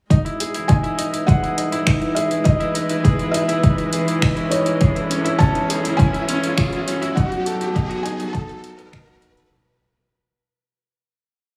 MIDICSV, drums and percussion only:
0, 0, Header, 1, 2, 480
1, 0, Start_track
1, 0, Key_signature, 4, "major"
1, 0, Tempo, 588235
1, 88, Time_signature, 4, 2, 24, 8
1, 9435, End_track
2, 0, Start_track
2, 0, Title_t, "Drums"
2, 85, Note_on_c, 9, 36, 90
2, 89, Note_on_c, 9, 42, 34
2, 167, Note_off_c, 9, 36, 0
2, 171, Note_off_c, 9, 42, 0
2, 212, Note_on_c, 9, 42, 18
2, 294, Note_off_c, 9, 42, 0
2, 329, Note_on_c, 9, 42, 65
2, 410, Note_off_c, 9, 42, 0
2, 444, Note_on_c, 9, 42, 29
2, 526, Note_off_c, 9, 42, 0
2, 564, Note_on_c, 9, 42, 36
2, 565, Note_on_c, 9, 36, 92
2, 645, Note_off_c, 9, 42, 0
2, 647, Note_off_c, 9, 36, 0
2, 686, Note_on_c, 9, 42, 18
2, 767, Note_off_c, 9, 42, 0
2, 805, Note_on_c, 9, 42, 65
2, 886, Note_off_c, 9, 42, 0
2, 928, Note_on_c, 9, 42, 27
2, 1009, Note_off_c, 9, 42, 0
2, 1045, Note_on_c, 9, 36, 97
2, 1051, Note_on_c, 9, 42, 35
2, 1127, Note_off_c, 9, 36, 0
2, 1132, Note_off_c, 9, 42, 0
2, 1172, Note_on_c, 9, 42, 19
2, 1254, Note_off_c, 9, 42, 0
2, 1288, Note_on_c, 9, 42, 60
2, 1370, Note_off_c, 9, 42, 0
2, 1407, Note_on_c, 9, 42, 28
2, 1489, Note_off_c, 9, 42, 0
2, 1523, Note_on_c, 9, 26, 74
2, 1523, Note_on_c, 9, 42, 37
2, 1525, Note_on_c, 9, 36, 94
2, 1605, Note_off_c, 9, 26, 0
2, 1605, Note_off_c, 9, 42, 0
2, 1607, Note_off_c, 9, 36, 0
2, 1645, Note_on_c, 9, 42, 18
2, 1726, Note_off_c, 9, 42, 0
2, 1766, Note_on_c, 9, 42, 69
2, 1848, Note_off_c, 9, 42, 0
2, 1885, Note_on_c, 9, 42, 27
2, 1966, Note_off_c, 9, 42, 0
2, 2002, Note_on_c, 9, 42, 38
2, 2005, Note_on_c, 9, 36, 99
2, 2084, Note_off_c, 9, 42, 0
2, 2086, Note_off_c, 9, 36, 0
2, 2126, Note_on_c, 9, 42, 21
2, 2208, Note_off_c, 9, 42, 0
2, 2245, Note_on_c, 9, 42, 69
2, 2326, Note_off_c, 9, 42, 0
2, 2362, Note_on_c, 9, 42, 29
2, 2444, Note_off_c, 9, 42, 0
2, 2486, Note_on_c, 9, 36, 101
2, 2488, Note_on_c, 9, 42, 41
2, 2567, Note_off_c, 9, 36, 0
2, 2570, Note_off_c, 9, 42, 0
2, 2606, Note_on_c, 9, 42, 19
2, 2687, Note_off_c, 9, 42, 0
2, 2728, Note_on_c, 9, 42, 74
2, 2810, Note_off_c, 9, 42, 0
2, 2847, Note_on_c, 9, 42, 29
2, 2929, Note_off_c, 9, 42, 0
2, 2966, Note_on_c, 9, 36, 101
2, 2966, Note_on_c, 9, 42, 39
2, 3048, Note_off_c, 9, 36, 0
2, 3048, Note_off_c, 9, 42, 0
2, 3087, Note_on_c, 9, 42, 21
2, 3169, Note_off_c, 9, 42, 0
2, 3204, Note_on_c, 9, 42, 73
2, 3285, Note_off_c, 9, 42, 0
2, 3329, Note_on_c, 9, 42, 31
2, 3411, Note_off_c, 9, 42, 0
2, 3445, Note_on_c, 9, 26, 73
2, 3445, Note_on_c, 9, 42, 41
2, 3446, Note_on_c, 9, 36, 93
2, 3527, Note_off_c, 9, 26, 0
2, 3527, Note_off_c, 9, 36, 0
2, 3527, Note_off_c, 9, 42, 0
2, 3564, Note_on_c, 9, 42, 20
2, 3645, Note_off_c, 9, 42, 0
2, 3685, Note_on_c, 9, 42, 73
2, 3766, Note_off_c, 9, 42, 0
2, 3803, Note_on_c, 9, 42, 30
2, 3885, Note_off_c, 9, 42, 0
2, 3923, Note_on_c, 9, 42, 40
2, 3927, Note_on_c, 9, 36, 102
2, 4004, Note_off_c, 9, 42, 0
2, 4008, Note_off_c, 9, 36, 0
2, 4050, Note_on_c, 9, 42, 22
2, 4131, Note_off_c, 9, 42, 0
2, 4168, Note_on_c, 9, 42, 71
2, 4250, Note_off_c, 9, 42, 0
2, 4289, Note_on_c, 9, 42, 32
2, 4370, Note_off_c, 9, 42, 0
2, 4407, Note_on_c, 9, 36, 102
2, 4410, Note_on_c, 9, 42, 41
2, 4489, Note_off_c, 9, 36, 0
2, 4492, Note_off_c, 9, 42, 0
2, 4531, Note_on_c, 9, 42, 20
2, 4612, Note_off_c, 9, 42, 0
2, 4651, Note_on_c, 9, 42, 79
2, 4733, Note_off_c, 9, 42, 0
2, 4774, Note_on_c, 9, 42, 32
2, 4855, Note_off_c, 9, 42, 0
2, 4888, Note_on_c, 9, 36, 110
2, 4893, Note_on_c, 9, 42, 41
2, 4970, Note_off_c, 9, 36, 0
2, 4974, Note_off_c, 9, 42, 0
2, 5013, Note_on_c, 9, 42, 21
2, 5095, Note_off_c, 9, 42, 0
2, 5130, Note_on_c, 9, 42, 73
2, 5211, Note_off_c, 9, 42, 0
2, 5251, Note_on_c, 9, 42, 31
2, 5333, Note_off_c, 9, 42, 0
2, 5366, Note_on_c, 9, 26, 79
2, 5366, Note_on_c, 9, 42, 44
2, 5369, Note_on_c, 9, 36, 93
2, 5448, Note_off_c, 9, 26, 0
2, 5448, Note_off_c, 9, 42, 0
2, 5450, Note_off_c, 9, 36, 0
2, 5488, Note_on_c, 9, 42, 23
2, 5570, Note_off_c, 9, 42, 0
2, 5611, Note_on_c, 9, 42, 79
2, 5693, Note_off_c, 9, 42, 0
2, 5733, Note_on_c, 9, 42, 31
2, 5814, Note_off_c, 9, 42, 0
2, 5849, Note_on_c, 9, 36, 103
2, 5853, Note_on_c, 9, 42, 43
2, 5931, Note_off_c, 9, 36, 0
2, 5935, Note_off_c, 9, 42, 0
2, 5972, Note_on_c, 9, 42, 21
2, 6054, Note_off_c, 9, 42, 0
2, 6090, Note_on_c, 9, 42, 78
2, 6171, Note_off_c, 9, 42, 0
2, 6210, Note_on_c, 9, 42, 33
2, 6292, Note_off_c, 9, 42, 0
2, 6330, Note_on_c, 9, 36, 102
2, 6332, Note_on_c, 9, 42, 45
2, 6411, Note_off_c, 9, 36, 0
2, 6414, Note_off_c, 9, 42, 0
2, 6451, Note_on_c, 9, 42, 22
2, 6533, Note_off_c, 9, 42, 0
2, 6574, Note_on_c, 9, 42, 77
2, 6655, Note_off_c, 9, 42, 0
2, 6690, Note_on_c, 9, 42, 32
2, 6771, Note_off_c, 9, 42, 0
2, 6810, Note_on_c, 9, 36, 116
2, 6811, Note_on_c, 9, 42, 44
2, 6891, Note_off_c, 9, 36, 0
2, 6893, Note_off_c, 9, 42, 0
2, 6931, Note_on_c, 9, 42, 22
2, 7012, Note_off_c, 9, 42, 0
2, 7048, Note_on_c, 9, 42, 75
2, 7130, Note_off_c, 9, 42, 0
2, 7170, Note_on_c, 9, 42, 30
2, 7251, Note_off_c, 9, 42, 0
2, 7287, Note_on_c, 9, 36, 100
2, 7289, Note_on_c, 9, 26, 74
2, 7289, Note_on_c, 9, 42, 44
2, 7369, Note_off_c, 9, 36, 0
2, 7371, Note_off_c, 9, 26, 0
2, 7371, Note_off_c, 9, 42, 0
2, 7405, Note_on_c, 9, 42, 22
2, 7487, Note_off_c, 9, 42, 0
2, 7525, Note_on_c, 9, 42, 74
2, 7606, Note_off_c, 9, 42, 0
2, 7648, Note_on_c, 9, 42, 32
2, 7729, Note_off_c, 9, 42, 0
2, 9435, End_track
0, 0, End_of_file